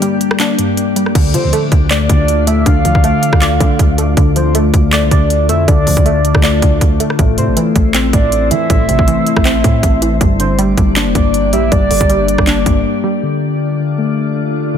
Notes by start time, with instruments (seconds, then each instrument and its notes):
Already playing: synth pluck G2 D3, tine electric piano G3 A#3, ambient pad A#3 D4 G4 D5
0.02 synth pluck G3, closed hi-hat
0.21 closed hi-hat
0.31 cross-stick
0.40 tine electric piano A#3, synth pluck D4, clap, closed hi-hat
0.59 synth pluck G2, closed hi-hat
0.77 closed hi-hat
0.96 synth pluck G3, closed hi-hat
1.06 cross-stick
1.15 808-style bass D2, synth pluck D3, tine electric piano D3, ambient pad A3 D4 F4 D5, kick, closed hi-hat, crash
1.34 808-style bass D3, synth pluck F3, soft synth lead C5, closed hi-hat
1.44 808-style bass D2
1.53 synth pluck A3, closed hi-hat
1.72 808-style bass D2, kick, closed hi-hat
1.91 tine electric piano A3, synth pluck D5, clap, closed hi-hat
2.10 808-style bass D2, synth pluck D3, soft synth lead D5, kick, closed hi-hat
2.28 closed hi-hat
2.47 synth pluck A3, soft synth lead E5, closed hi-hat
2.66 808-style bass D2, tine electric piano D3, synth pluck D3, soft synth lead F5, kick, closed hi-hat
2.85 808-style bass D2, synth pluck F3, closed hi-hat
2.95 808-style bass D2, kick
3.04 synth pluck A3, closed hi-hat
3.23 closed hi-hat
3.33 808-style bass D2, kick, cross-stick
3.42 tine electric piano A3, synth pluck D5, clap, closed hi-hat
3.60 synth pluck D3, 808-style bass D3, kick, closed hi-hat
3.79 808-style bass D2, kick, closed hi-hat
3.98 synth pluck A3, closed hi-hat
4.17 808-style bass D2, tine electric piano D3, synth pluck D3, kick, closed hi-hat
4.36 synth pluck F3, soft synth lead C5, closed hi-hat
4.55 synth pluck A3, closed hi-hat
4.74 808-style bass D2, kick, closed hi-hat
4.93 tine electric piano A3, synth pluck D5, clap, closed hi-hat
5.03 808-style bass C2
5.11 808-style bass D2, synth pluck D3, soft synth lead D5, kick, closed hi-hat
5.30 closed hi-hat
5.49 808-style bass F2, synth pluck A3, soft synth lead E5, closed hi-hat
5.68 808-style bass D2, tine electric piano D3, synth pluck D3, soft synth lead D5, kick, closed hi-hat
5.87 808-style bass D2, synth pluck F3, closed hi-hat, open hi-hat
5.97 808-style bass D2, kick, closed hi-hat
6.06 synth pluck A3, closed hi-hat
6.25 closed hi-hat
6.35 808-style bass D2, kick, cross-stick
6.43 tine electric piano A3, synth pluck D5, clap, closed hi-hat
6.62 808-style bass D2, synth pluck D3, kick, closed hi-hat
6.81 808-style bass D2, kick, closed hi-hat
7.00 synth pluck A3, closed hi-hat
7.10 cross-stick
7.19 808-style bass A1, synth pluck A2, ambient pad A3 C4 E4 C5, tine electric piano A3, kick, closed hi-hat
7.38 808-style bass A2, synth pluck C3, soft synth lead C5, closed hi-hat
7.48 808-style bass A1
7.57 synth pluck E3, closed hi-hat
7.76 808-style bass A1, kick, closed hi-hat
7.94 synth pluck C4, tine electric piano C4, clap, closed hi-hat
8.13 808-style bass A1, synth pluck A2, soft synth lead D5, kick, closed hi-hat
8.32 closed hi-hat
8.51 808-style bass E3, synth pluck E3, soft synth lead E5, closed hi-hat
8.70 808-style bass A1, synth pluck A2, tine electric piano A3, soft synth lead E5, kick, closed hi-hat
8.89 808-style bass A1, synth pluck C3, closed hi-hat
8.99 808-style bass A1, kick
9.08 synth pluck E3, closed hi-hat
9.27 closed hi-hat
9.37 808-style bass A1, kick, cross-stick
9.45 synth pluck C4, tine electric piano C4, clap, closed hi-hat
9.64 808-style bass A2, synth pluck A2, kick, closed hi-hat
9.83 808-style bass A1, kick, closed hi-hat
10.02 synth pluck E3, closed hi-hat
10.21 808-style bass G1, synth pluck G2, tine electric piano G3, ambient pad A#3 D4 G4 D5, kick, closed hi-hat
10.40 synth pluck D3, soft synth lead C5, closed hi-hat
10.59 synth pluck G3, closed hi-hat
10.78 808-style bass G1, kick, closed hi-hat
10.96 tine electric piano A#3, synth pluck D4, clap, closed hi-hat
11.06 808-style bass F1
11.15 808-style bass G1, synth pluck G2, soft synth lead D5, kick, closed hi-hat
11.34 closed hi-hat
11.53 808-style bass A#1, synth pluck G3, soft synth lead E5, closed hi-hat
11.72 808-style bass G1, synth pluck G2, tine electric piano G3, soft synth lead D5, kick, closed hi-hat
11.91 808-style bass G1, synth pluck D3, closed hi-hat, open hi-hat
12.01 808-style bass G1, kick, closed hi-hat
12.10 synth pluck G3, closed hi-hat
12.28 closed hi-hat
12.38 808-style bass G1, kick, cross-stick
12.47 tine electric piano A#3, synth pluck D4, clap, closed hi-hat
12.66 808-style bass G1, synth pluck G2, kick, closed hi-hat
13.04 synth pluck G3
13.23 tine electric piano D3, ambient pad A3 D4 F4 D5
13.98 tine electric piano A3
14.74 tine electric piano D3